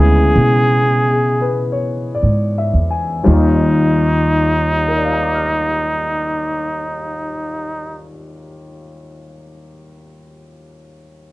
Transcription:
Already playing: D2 C#3 D3 E3 G#3 B3 E4 G#4
0.36 B2
1.10 G#4
1.41 B4
1.72 C#5
2.15 D5
2.23 G#2
2.58 E5
2.74 E2
2.91 G#5
3.24 D#2 D#3 G3 D#4 F4
3.30 D#4
4.88 A#4
4.97 D5
5.04 F5
5.13 A#5
5.23 D6
5.34 F6
5.46 A#6

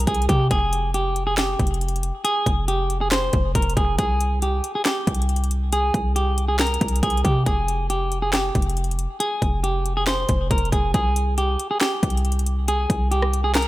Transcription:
0.00 closed hi-hat
0.07 C2 G#4, kick, closed hi-hat
0.15 closed hi-hat
0.22 closed hi-hat
0.29 C3 G4, kick, closed hi-hat
0.51 F1 G#4, kick, closed hi-hat
0.73 closed hi-hat
0.94 G4, closed hi-hat
1.16 closed hi-hat
1.27 G#4
1.38 G4, snare, clap, closed hi-hat
1.59 F1, kick, closed hi-hat
1.67 closed hi-hat
1.74 closed hi-hat
1.81 closed hi-hat
1.88 closed hi-hat
1.96 closed hi-hat
2.03 closed hi-hat
2.25 G#4, closed hi-hat
2.46 F1, kick, closed hi-hat
2.68 G4, closed hi-hat
2.90 closed hi-hat
3.01 G#4
3.11 C5, snare, clap, closed hi-hat
3.33 F1, kick, closed hi-hat
3.55 F1 A#4, kick, closed hi-hat
3.62 closed hi-hat
3.70 closed hi-hat
3.77 F1 G#4, kick, closed hi-hat
3.99 C2 G#4, kick, closed hi-hat
4.21 closed hi-hat
4.42 G4, closed hi-hat
4.64 closed hi-hat
4.75 G#4
4.85 G4, snare, clap, closed hi-hat
5.07 C2, kick, closed hi-hat
5.15 closed hi-hat
5.22 closed hi-hat
5.29 closed hi-hat
5.36 closed hi-hat
5.44 closed hi-hat
5.51 closed hi-hat
5.72 G#4, closed hi-hat
5.94 C2, kick, closed hi-hat
6.16 G4, closed hi-hat
6.38 closed hi-hat
6.48 G#4
6.59 A#4, snare, clap, closed hi-hat
6.67 closed hi-hat
6.74 closed hi-hat
6.81 C2, kick, closed hi-hat
6.88 closed hi-hat
6.96 closed hi-hat
7.03 C2 G#4, kick, closed hi-hat
7.10 closed hi-hat
7.17 closed hi-hat
7.25 C3 G4, kick, closed hi-hat
7.46 F1 G#4, kick, closed hi-hat
7.68 closed hi-hat
7.90 G4, closed hi-hat
8.12 closed hi-hat
8.22 G#4
8.33 G4, snare, clap, closed hi-hat
8.55 F1, kick, closed hi-hat
8.62 closed hi-hat
8.70 closed hi-hat
8.77 closed hi-hat
8.84 closed hi-hat
8.91 closed hi-hat
8.99 closed hi-hat
9.20 G#4, closed hi-hat
9.42 F1, kick, closed hi-hat
9.64 G4, closed hi-hat
9.86 closed hi-hat
9.97 G#4
10.07 C5, snare, clap, closed hi-hat
10.29 F1, kick, closed hi-hat
10.51 F1 A#4, kick, closed hi-hat
10.58 closed hi-hat
10.65 closed hi-hat
10.72 F1 G#4, kick, closed hi-hat
10.94 C2 G#4, kick, closed hi-hat
11.16 closed hi-hat
11.38 G4, closed hi-hat
11.60 closed hi-hat
11.71 G#4
11.81 G4, snare, clap, closed hi-hat
12.03 C2, kick, closed hi-hat
12.10 closed hi-hat
12.17 closed hi-hat
12.25 closed hi-hat
12.32 closed hi-hat
12.39 closed hi-hat
12.46 closed hi-hat
12.68 G#4, closed hi-hat
12.90 C2, kick, closed hi-hat
13.11 G4, closed hi-hat
13.22 cross-stick
13.33 closed hi-hat
13.44 G#4
13.55 A#4, snare, clap, closed hi-hat, reverse cymbal
13.62 closed hi-hat

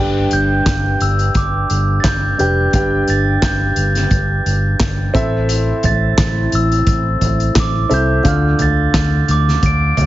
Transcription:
Already playing: G1 G2 D4 G4 B4 G5
0.31 G1 G6, closed hi-hat
0.66 G1, kick, snare, clap, closed hi-hat
1.00 G1 E6, closed hi-hat
1.19 closed hi-hat
1.35 G1 D6, kick, closed hi-hat
1.70 G1, closed hi-hat
2.00 A6, snare
2.04 G1 G6, kick, clap, closed hi-hat
2.38 F1 D4 G4 B4 G5 G6, closed hi-hat
2.73 G1 G2 D4 G4 B4 G5, kick, closed hi-hat
3.08 G1 A6, closed hi-hat
3.42 G1 G6, kick, snare, clap, closed hi-hat
3.76 G1, closed hi-hat
3.95 snare, closed hi-hat
4.11 G1, kick, closed hi-hat
4.46 G1, closed hi-hat
4.80 G1, kick, snare, clap, closed hi-hat
5.14 A1 A2 C4 E4 A4 E5, kick, closed hi-hat
5.49 closed hi-hat
5.83 A1 A6, closed hi-hat, floor tom
6.18 A1, kick, snare, clap, closed hi-hat
6.52 A1 E6, closed hi-hat
6.72 closed hi-hat
6.87 A1, kick, closed hi-hat
7.21 A1, closed hi-hat, floor tom
7.40 closed hi-hat
7.55 A1, kick, snare, clap, closed hi-hat
7.60 D6
7.89 C2 C4 E4 A4 E5, closed hi-hat
7.94 G6
8.23 D2 D3 D4 F4 A4 F5, kick, closed hi-hat
8.28 F6
8.59 D2 A6, closed hi-hat, floor tom
8.94 D2, kick, snare, clap, closed hi-hat
9.28 D2 D6, closed hi-hat
9.48 snare
9.63 D2 D7, kick, closed hi-hat
9.97 D2, closed hi-hat, floor tom

